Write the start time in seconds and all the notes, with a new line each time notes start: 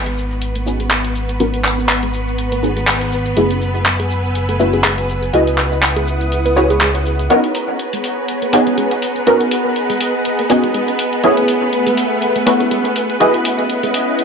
Already playing: G#1 B3 C#4 D#4 F#4 A#4 B4 F#5 A#5 C#6
0.06 G#4, closed hi-hat
0.17 shaker
0.31 shaker
0.42 closed hi-hat, shaker
0.55 A#4, closed hi-hat, shaker
0.66 B3 C#4 D#4 F#4 G#4 B4, shaker
0.80 G#4, closed hi-hat, shaker
0.91 G#4, clap, closed hi-hat, shaker
1.04 closed hi-hat, shaker
1.15 shaker
1.29 closed hi-hat, shaker
1.40 B3 C#4 D#4 F#4 A#4, closed hi-hat, shaker
1.54 closed hi-hat, shaker
1.64 clap, shaker
1.79 shaker
1.89 clap, closed hi-hat, shaker
2.03 G#4, closed hi-hat
2.14 shaker
2.28 shaker
2.38 closed hi-hat, shaker
2.52 A#4, closed hi-hat, shaker
2.63 B3 C#4 D#4 F#4 G#4 B4, shaker
2.77 G#4, closed hi-hat, shaker
2.87 G#4, clap, closed hi-hat, shaker
3.01 closed hi-hat, shaker
3.12 shaker
3.26 closed hi-hat, shaker
3.37 F#1 A3 B3 C#4 E4 F#4 G#4 B4 G#5 E6, closed hi-hat, shaker
3.51 closed hi-hat, shaker
3.62 shaker
3.75 shaker
3.86 clap, closed hi-hat, shaker
4.00 G#4, closed hi-hat
4.10 shaker
4.25 shaker
4.35 closed hi-hat, shaker
4.49 A4, closed hi-hat, shaker
4.60 A3 B3 C#4 E4 F#4 B4, shaker
4.73 G#4, closed hi-hat, shaker
4.84 G#4, clap, closed hi-hat, shaker
4.98 closed hi-hat, shaker
5.09 shaker
5.23 closed hi-hat, shaker
5.33 C#2 E4 F#4 G#4 B4 D#5 F#5 D#6, closed hi-hat, shaker
5.47 closed hi-hat, shaker
5.58 clap, shaker
5.72 shaker
5.82 clap, closed hi-hat, shaker
5.96 G#4, closed hi-hat
6.07 shaker
6.21 closed hi-hat, shaker
6.32 closed hi-hat, shaker
6.45 B4, closed hi-hat, shaker
6.56 E4 F#4 G#4 B4 C#5, shaker
6.70 G#4, closed hi-hat, shaker
6.81 G#4, clap, closed hi-hat, shaker
6.94 closed hi-hat, shaker
7.06 shaker
7.19 closed hi-hat, shaker
7.30 B3 C#4 D#4 F#4 G#4 A#4 B4 C#5 F#5 A#5, closed hi-hat
7.44 closed hi-hat
7.55 open hi-hat
7.79 closed hi-hat
7.93 G#4, open hi-hat
8.04 open hi-hat
8.28 closed hi-hat
8.42 A#4, closed hi-hat
8.53 B3 C#4 D#4 F#4 G#4 B4, open hi-hat
8.67 G#4, closed hi-hat
8.78 G#4, closed hi-hat
8.91 closed hi-hat
9.02 open hi-hat
9.16 closed hi-hat
9.27 B3 C#4 D#4 F#4 A#4 D#5, closed hi-hat
9.41 closed hi-hat
9.51 open hi-hat
9.76 closed hi-hat
9.90 G#4, open hi-hat
10.01 open hi-hat
10.25 closed hi-hat
10.39 A#4, closed hi-hat
10.50 B3 C#4 D#4 F#4 G#4 B4, open hi-hat
10.64 G#4, closed hi-hat
10.74 G#4, closed hi-hat
10.88 closed hi-hat
10.99 open hi-hat
11.13 closed hi-hat
11.23 A3 B3 C#4 E4 F#4 G#4 E5, closed hi-hat
11.37 closed hi-hat
11.48 open hi-hat
11.73 closed hi-hat
11.87 G#4, open hi-hat
11.97 open hi-hat
12.22 closed hi-hat
12.36 A4, closed hi-hat
12.46 A3 B3 C#4 E4 F#4 B4, open hi-hat
12.60 G#4, closed hi-hat
12.71 G#4, closed hi-hat
12.85 closed hi-hat
12.96 open hi-hat
13.10 closed hi-hat
13.20 C#4 E4 F#4 G#4 B4 D#5, closed hi-hat
13.34 closed hi-hat
13.45 open hi-hat
13.59 closed hi-hat
13.70 closed hi-hat
13.83 G#4, open hi-hat
13.94 open hi-hat
14.19 closed hi-hat